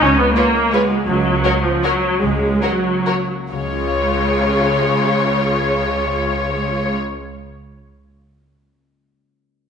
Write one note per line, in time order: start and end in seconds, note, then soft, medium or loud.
0.00 0.30 C#2 soft
0.00 0.30 C#2 medium
0.00 1.06 C#3 soft
0.00 0.53 G#3 soft
0.00 0.17 B3 soft
0.00 1.63 C#4 soft
0.00 0.18 C#4 medium
0.00 0.35 F4 soft
0.18 0.36 B3 medium
0.36 0.72 A#3 medium
0.36 0.89 F4 soft
0.36 0.45 F4 soft
0.36 0.44 B4 soft
0.36 0.44 C#5 soft
0.54 1.09 G#3 soft
0.73 1.08 G#3 medium
0.73 1.09 B3 soft
0.73 0.81 F4 soft
0.73 0.81 B4 soft
0.73 0.81 C#5 soft
0.91 1.09 F4 soft
1.07 1.37 C#2 medium
1.07 1.38 C#2 soft
1.07 2.21 C#3 soft
1.07 1.62 F#3 medium
1.25 1.82 A#3 soft
1.44 2.01 F#4 soft
1.44 1.52 F#4 soft
1.44 1.52 A#4 soft
1.44 1.52 C#5 soft
1.64 1.84 F3 medium
1.64 2.84 C#4 soft
1.83 2.22 F#3 medium
1.83 2.41 A#3 soft
1.83 1.93 F#4 soft
1.83 1.92 A#4 soft
1.83 1.91 C#5 soft
2.03 2.62 F#4 soft
2.22 2.56 C#2 soft
2.22 3.51 C#3 soft
2.22 2.63 G#3 medium
2.42 3.06 A#3 soft
2.63 3.30 F#3 soft
2.63 3.29 F#4 soft
2.63 2.71 F#4 soft
2.63 2.71 A#4 soft
2.63 2.71 C#5 soft
2.85 3.65 C#4 soft
3.07 3.54 A#3 soft
3.07 3.15 F#4 soft
3.07 3.15 A#4 soft
3.07 3.16 C#5 soft
3.30 3.54 F#4 soft
3.52 6.95 C#2 soft
3.52 7.57 C#3 soft
3.52 6.95 C#3 soft
3.52 6.95 F4 soft
3.52 6.95 C#5 soft
3.59 7.64 G#3 soft
3.66 7.71 C#4 soft
3.73 7.75 F4 soft
3.87 7.82 F5 soft